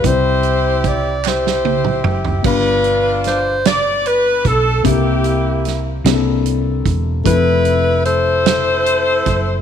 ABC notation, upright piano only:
X:1
M:6/8
L:1/8
Q:3/8=50
K:C
V:1 name="Upright piano"
[G,CEGc]6 | [B,,DFGb]6 | [_B,CDEG_B]3 [B,CDE_A=A]3 | [F,A,CEA]6 |]
V:2 name="Upright piano" clef=bass
C,3 z3 | G,,3 z3 | C,3 C,3 | z6 |]